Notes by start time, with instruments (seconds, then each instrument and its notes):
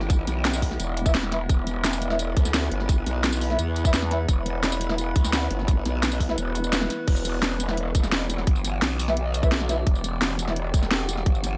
Already playing: wobble bass G1, synth drone E3 B3 E4 G4
0.01 snare
0.10 kick, closed hi-hat, tambourine
0.27 wobble bass B1, snare, closed hi-hat, tambourine
0.45 snare, closed hi-hat, tambourine
0.54 tambourine
0.62 kick, open hi-hat, tambourine
0.71 snare
0.80 wobble bass E1, closed hi-hat, tambourine
0.97 closed hi-hat, tambourine
1.06 brass ensemble E4 B4 E5, kick, tambourine
1.14 wobble bass E1, snare, closed hi-hat, tambourine
1.23 snare
1.32 brass ensemble E4 B4 E5, snare, closed hi-hat
1.49 wobble bass E1, synth drone B4, kick, closed hi-hat, tambourine
1.67 closed hi-hat, tambourine
1.84 snare, closed hi-hat, tambourine
1.93 tambourine
2.02 closed hi-hat, tambourine
2.10 brass ensemble E4 B4 E5, snare
2.19 closed hi-hat, tambourine
2.37 wobble bass D2, kick, closed hi-hat, tambourine
2.45 snare, tambourine
2.54 snare, closed hi-hat, tambourine
2.72 wobble bass G1, closed hi-hat
2.80 snare
2.89 kick, closed hi-hat, tambourine
3.06 wobble bass B1, snare, closed hi-hat, tambourine
3.24 snare, closed hi-hat, tambourine
3.33 tambourine
3.41 open hi-hat, tambourine
3.50 brass ensemble E4 B4 E5, snare
3.59 wobble bass E2, closed hi-hat, tambourine
3.76 closed hi-hat, tambourine
3.85 brass ensemble E4 B4 E5, kick, tambourine
3.94 snare, closed hi-hat, tambourine
4.02 snare
4.11 brass ensemble E4 B4 E5, snare, closed hi-hat
4.29 wobble bass E1, kick, closed hi-hat, tambourine
4.46 closed hi-hat, tambourine
4.63 snare, closed hi-hat, tambourine
4.72 tambourine
4.81 closed hi-hat, tambourine
4.90 brass ensemble E4 B4 E5, snare
4.98 closed hi-hat, tambourine
5.16 wobble bass D2, kick, closed hi-hat, tambourine
5.24 snare, tambourine
5.33 snare, closed hi-hat, tambourine
5.51 wobble bass G1, closed hi-hat
5.59 snare
5.68 kick, closed hi-hat, tambourine
5.85 wobble bass B1, snare, closed hi-hat, tambourine
6.03 snare, closed hi-hat, tambourine
6.12 tambourine
6.20 kick, open hi-hat, tambourine
6.29 brass ensemble E4 B4 E5, snare
6.38 wobble bass E1, closed hi-hat, tambourine
6.55 closed hi-hat, tambourine
6.64 tambourine
6.73 snare, closed hi-hat, tambourine
6.81 snare
6.90 snare, closed hi-hat, tambourine
7.08 wobble bass E1, synth drone E3 B3 F#4 G4, kick, closed hi-hat, crash
7.16 tambourine
7.25 closed hi-hat, tambourine
7.42 snare, closed hi-hat
7.60 closed hi-hat, tambourine
7.69 brass ensemble E4 B4 E5, snare
7.77 closed hi-hat
7.95 kick, closed hi-hat, tambourine
8.04 snare, tambourine
8.12 snare, closed hi-hat
8.30 closed hi-hat, tambourine
8.38 snare
8.47 wobble bass G1, kick, closed hi-hat
8.56 tambourine
8.65 snare, closed hi-hat, tambourine
8.82 wobble bass B1, snare, closed hi-hat
8.99 open hi-hat, tambourine
9.08 brass ensemble E4 B4 E5, snare
9.17 closed hi-hat
9.34 closed hi-hat, tambourine
9.43 brass ensemble E4 B4 E5, kick, tambourine
9.52 snare, closed hi-hat
9.60 snare
9.69 brass ensemble E4 B4 E5, snare, closed hi-hat, tambourine
9.87 wobble bass E1, kick, closed hi-hat
9.95 tambourine
10.04 closed hi-hat, tambourine
10.22 snare, closed hi-hat
10.39 closed hi-hat, tambourine
10.48 brass ensemble E4 B4 E5, snare
10.56 closed hi-hat
10.74 kick, closed hi-hat, tambourine
10.83 snare, tambourine
10.91 snare, closed hi-hat
11.09 closed hi-hat, tambourine
11.17 snare
11.26 wobble bass G1, kick, closed hi-hat
11.35 tambourine
11.44 snare, closed hi-hat, tambourine